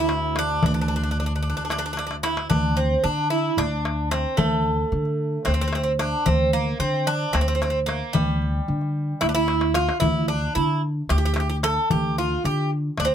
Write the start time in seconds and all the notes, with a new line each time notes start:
Already playing: D2
0.00 E4
0.09 darbuka tek
0.36 D4, darbuka tek
0.63 D2 D4, darbuka dum
0.74 D4
0.81 D4
0.88 D4, darbuka ka
0.96 D4
1.03 D4
1.11 D4
1.17 D4, darbuka ka
1.26 D4, darbuka ka
1.35 D4
1.42 D4
1.50 D4
1.57 D4
1.65 D4
1.70 D4, darbuka tek
1.78 D4
1.86 D4
1.93 D4
1.97 D4, darbuka tek
2.07 D4
2.11 darbuka ka
2.23 E4, darbuka tek
2.37 darbuka ka
2.50 D2 D4, darbuka dum
2.77 C4
3.04 D3 D4, darbuka ka
3.18 darbuka ka
3.30 E4
3.57 D2 D4, darbuka tek
3.85 darbuka tek
4.11 C4, darbuka tek
4.37 D2 A3, darbuka dum
4.92 D3, darbuka ka
5.05 darbuka ka
5.45 D2 C4, darbuka tek
5.54 C4
5.61 C4
5.68 C4
5.73 C4, darbuka tek
5.83 C4
5.99 D4, darbuka tek
6.26 D2 C4, darbuka dum
6.53 A#3
6.79 D3 C4, darbuka ka
6.94 darbuka ka
7.07 D4
7.33 D2 C4, darbuka tek
7.41 C4
7.48 C4
7.55 C4
7.62 C4, darbuka tek
7.70 C4
7.86 A#3, darbuka tek
8.13 D2 G3, darbuka dum
8.42 darbuka ka
8.68 D3, darbuka ka
8.81 darbuka ka
9.21 D2 E4, darbuka tek
9.29 D4
9.35 E4
9.48 darbuka tek
9.61 darbuka ka
9.74 F4, darbuka tek
9.89 darbuka ka
10.00 D2 E4, darbuka dum
10.28 D4
10.55 D3 E4
10.69 darbuka ka
11.09 D2 G4, darbuka tek
11.18 G4
11.25 G4
11.34 G4, darbuka tek
11.40 G4
11.49 G4
11.63 A4, darbuka tek
11.90 D2 G4, darbuka dum
12.18 F4
12.44 D3 G4, darbuka ka
12.58 darbuka ka
12.98 D2 D4, darbuka tek
13.05 C4